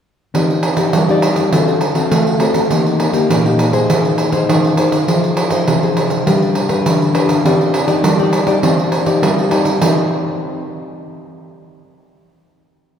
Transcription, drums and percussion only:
0.35 pandeiro medium
0.50 pandeiro soft
0.63 pandeiro medium
0.77 pandeiro medium
0.93 pandeiro medium
1.09 pandeiro soft
1.22 pandeiro medium
1.36 pandeiro soft
1.52 pandeiro medium
1.68 pandeiro soft
1.81 pandeiro medium
1.95 pandeiro medium
2.11 pandeiro medium
2.27 pandeiro soft
2.40 pandeiro medium
2.54 pandeiro medium
2.71 pandeiro medium
2.86 pandeiro soft
3.00 pandeiro medium
3.13 pandeiro medium
3.30 pandeiro medium
3.46 pandeiro soft
3.59 pandeiro medium
3.73 pandeiro soft
3.90 pandeiro medium
4.05 pandeiro soft
4.18 pandeiro medium
4.32 pandeiro medium
4.49 pandeiro medium
4.64 pandeiro soft
4.77 pandeiro medium
4.92 pandeiro medium
5.08 pandeiro medium
5.24 pandeiro soft
5.37 pandeiro medium
5.50 pandeiro medium
5.68 pandeiro medium
5.83 pandeiro soft
5.97 pandeiro medium
6.10 pandeiro soft
6.27 pandeiro medium
6.42 pandeiro soft
6.55 pandeiro medium
6.69 pandeiro medium
6.86 pandeiro medium
7.02 pandeiro soft
7.15 pandeiro medium
7.29 pandeiro medium
7.45 pandeiro medium
7.61 pandeiro soft
7.74 pandeiro medium
7.88 pandeiro medium
8.04 pandeiro medium
8.19 pandeiro soft
8.33 pandeiro medium
8.47 pandeiro medium
8.63 pandeiro medium
8.79 pandeiro soft
8.92 pandeiro medium
9.06 pandeiro medium
9.23 pandeiro medium
9.38 pandeiro soft
9.51 pandeiro medium
9.65 pandeiro medium
9.82 pandeiro medium

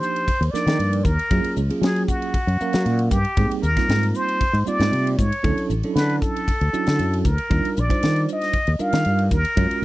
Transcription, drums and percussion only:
0.03 hi-hat pedal medium
0.16 ride medium
0.28 kick medium
0.28 ride medium
0.42 ride medium
0.55 snare soft
0.55 hi-hat pedal medium
0.67 snare medium
0.67 ride medium
0.80 ride medium
0.93 ride medium
1.05 kick medium
1.05 hi-hat pedal medium
1.19 ride medium
1.31 kick medium
1.31 ride medium
1.44 ride medium
1.56 hi-hat pedal medium
1.70 ride medium
1.83 snare loud
1.83 ride medium
1.96 ride soft
2.08 kick medium
2.08 hi-hat pedal medium
2.22 ride soft
2.34 kick medium
2.34 ride medium
2.48 ride soft
2.60 hi-hat pedal medium
2.73 snare loud
2.73 ride soft
2.86 ride medium
2.99 ride medium
3.11 kick medium
3.11 hi-hat pedal medium
3.25 ride soft
3.37 kick loud
3.37 ride medium
3.51 ride medium
3.63 hi-hat pedal medium
3.77 kick medium
3.77 snare soft
3.77 ride medium
3.89 snare loud
3.89 ride medium
4.03 ride medium
4.15 hi-hat pedal medium
4.28 ride medium
4.41 kick medium
4.41 ride medium
4.54 ride medium
4.66 hi-hat pedal medium
4.80 snare medium
4.80 ride medium
4.93 ride medium
5.07 ride medium
5.19 kick medium
5.19 hi-hat pedal medium
5.32 ride medium
5.44 kick loud
5.44 ride medium
5.58 ride medium
5.70 hi-hat pedal medium
5.83 ride soft
5.96 snare medium
5.96 ride medium
6.09 ride soft
6.22 kick medium
6.22 hi-hat pedal medium
6.36 ride medium
6.48 kick medium
6.48 ride medium
6.61 ride soft
6.73 hi-hat pedal medium
6.86 snare medium
6.86 ride soft
6.99 ride medium
7.13 ride medium
7.25 kick medium
7.25 hi-hat pedal medium
7.38 ride medium
7.51 kick loud
7.51 ride medium
7.65 ride medium
7.77 hi-hat pedal medium
7.90 kick medium
7.90 ride medium
8.03 snare medium
8.03 ride medium
8.16 ride soft
8.28 hi-hat pedal medium
8.42 snare soft
8.42 ride medium
8.53 kick medium
8.53 ride medium
8.67 ride medium
8.79 hi-hat pedal medium
8.93 snare medium
8.93 ride medium
9.05 ride medium
9.19 ride medium
9.31 kick medium
9.31 hi-hat pedal medium
9.45 ride medium
9.57 kick loud
9.57 ride medium
9.71 ride medium

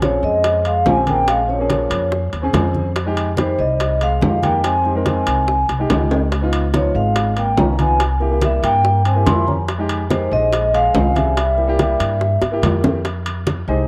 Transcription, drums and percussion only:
0.02 high bongo medium
0.02 high conga medium
0.02 high timbale medium
0.02 low timbale medium
0.23 high conga soft
0.44 high bongo medium
0.44 high conga soft
0.44 high timbale medium
0.65 high conga soft
0.65 high timbale medium
0.86 high bongo medium
0.86 low bongo medium
0.86 high conga medium
0.86 low timbale medium
1.07 high conga medium
1.07 high timbale medium
1.28 high bongo medium
1.28 high conga soft
1.28 high timbale medium
1.49 high conga soft
1.70 high bongo medium
1.70 high conga medium
1.70 high timbale medium
1.70 low timbale medium
1.91 high bongo soft
1.91 high conga soft
1.91 high timbale medium
2.12 high bongo medium
2.12 high conga soft
2.33 high bongo soft
2.33 high conga soft
2.33 high timbale medium
2.53 high bongo medium
2.53 low bongo medium
2.53 high conga medium
2.53 high timbale medium
2.53 low timbale medium
2.75 high bongo soft
2.75 high conga medium
2.96 high bongo medium
2.96 high conga soft
2.96 high timbale medium
3.16 high conga soft
3.16 high timbale medium
3.37 high bongo medium
3.37 high conga medium
3.37 high timbale medium
3.37 low timbale medium
3.59 high conga soft
3.79 high bongo medium
3.79 high conga soft
3.79 high timbale medium
4.01 high conga soft
4.01 high timbale medium
4.21 high bongo medium
4.21 low bongo medium
4.21 high conga medium
4.21 low timbale medium
4.43 high conga medium
4.43 high timbale medium
4.64 high bongo medium
4.64 high conga soft
4.64 high timbale medium
4.85 high conga soft
5.06 high bongo medium
5.06 high conga medium
5.06 high timbale medium
5.06 low timbale medium
5.27 high bongo soft
5.27 high conga soft
5.27 high timbale medium
5.48 high bongo medium
5.48 high conga soft
5.69 high bongo soft
5.69 high conga soft
5.69 high timbale medium
5.90 high bongo medium
5.90 low bongo medium
5.90 high conga medium
5.90 high timbale medium
5.90 low timbale medium
6.11 high bongo soft
6.11 high timbale medium
6.32 high bongo medium
6.32 high conga soft
6.32 high timbale medium
6.53 high conga soft
6.53 high timbale medium
6.74 high bongo medium
6.74 high conga medium
6.74 high timbale medium
6.74 low timbale medium
6.96 high conga soft
7.16 high bongo medium
7.16 high conga soft
7.16 high timbale medium
7.37 high conga soft
7.37 high timbale medium
7.57 high bongo medium
7.57 low bongo medium
7.57 high conga medium
7.57 low timbale medium
7.79 high conga medium
7.79 high timbale medium
8.00 high bongo medium
8.00 high conga soft
8.00 high timbale medium
8.21 high conga soft
8.41 high bongo medium
8.41 high conga medium
8.41 high timbale medium
8.41 low timbale medium
8.64 high bongo soft
8.64 high conga soft
8.64 high timbale medium
8.84 high bongo medium
8.84 high conga soft
9.05 high bongo soft
9.05 high conga soft
9.05 high timbale medium
9.27 high bongo medium
9.27 low bongo medium
9.27 high conga medium
9.27 high timbale medium
9.27 low timbale medium
9.47 high bongo soft
9.47 high conga medium
9.68 high bongo medium
9.68 high conga soft
9.68 high timbale medium
9.89 high conga soft
9.89 high timbale medium
10.10 high bongo medium
10.10 high conga medium
10.10 high timbale medium
10.10 low timbale medium
10.32 high conga soft
10.53 high bongo medium
10.53 high conga soft
10.53 high timbale medium
10.74 high conga soft
10.74 high timbale medium
10.94 high bongo medium
10.94 low bongo medium
10.94 high conga medium
10.94 low timbale medium
11.16 high conga medium
11.16 high timbale medium
11.37 high bongo medium
11.37 high timbale medium
11.58 high conga soft
11.79 high bongo medium
11.79 high conga medium
11.79 high timbale medium
11.79 low timbale medium
12.00 high bongo soft
12.00 high conga soft
12.00 high timbale medium
12.21 high bongo medium
12.21 high conga soft
12.42 high bongo medium
12.42 high conga soft
12.42 high timbale medium
12.63 high conga medium
12.63 high timbale medium
12.63 low timbale medium
12.84 low bongo loud
12.84 high conga medium
12.84 high timbale medium
13.05 high bongo medium
13.05 high conga soft
13.05 high timbale medium
13.26 high conga soft
13.26 high timbale medium
13.47 high bongo medium
13.47 high conga medium
13.47 high timbale medium
13.47 low timbale medium
13.68 high conga soft

